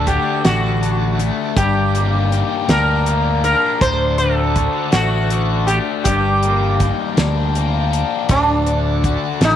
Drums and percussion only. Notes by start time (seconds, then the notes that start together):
0.07 kick, closed hi-hat
0.45 snare, closed hi-hat
0.83 closed hi-hat
1.19 closed hi-hat
1.57 kick, closed hi-hat
1.95 closed hi-hat
2.32 closed hi-hat
2.69 snare, closed hi-hat
3.06 closed hi-hat
3.44 closed hi-hat
3.81 kick, closed hi-hat
4.18 closed hi-hat
4.56 kick, closed hi-hat
4.92 snare, closed hi-hat
5.30 closed hi-hat
5.68 closed hi-hat
6.05 kick, closed hi-hat
6.43 closed hi-hat
6.80 kick, closed hi-hat
7.17 snare, closed hi-hat
7.55 closed hi-hat
7.93 closed hi-hat
8.29 kick, closed hi-hat
8.66 closed hi-hat
9.04 kick, closed hi-hat
9.41 snare, closed hi-hat